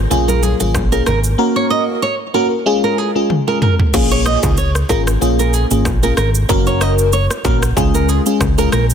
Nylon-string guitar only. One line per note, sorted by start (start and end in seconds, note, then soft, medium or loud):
0.28 0.43 A#4 medium
0.43 0.55 G#4 medium
0.92 1.02 A#4 medium
1.06 1.18 A#4 medium
1.56 1.66 C#5 medium
1.70 1.82 D#5 medium
2.02 2.14 C#5 medium
2.34 2.46 A#4 medium
2.84 2.98 A#4 medium
2.98 3.10 G#4 medium
3.48 3.57 A#4 medium
3.62 3.74 A#4 medium
4.11 4.21 C#5 medium
4.26 4.38 D#5 medium
4.58 4.70 C#5 medium
4.90 5.01 A#4 medium
5.39 5.53 A#4 medium
5.53 5.65 G#4 medium
6.03 6.13 A#4 medium
6.17 6.29 A#4 medium
6.67 6.81 C#5 medium
6.81 6.93 D#5 medium
7.13 7.25 C#5 medium
7.45 7.57 A#4 medium
7.94 8.09 A#4 medium
8.09 8.21 G#4 medium
8.58 8.68 A#4 medium
8.73 8.85 A#4 medium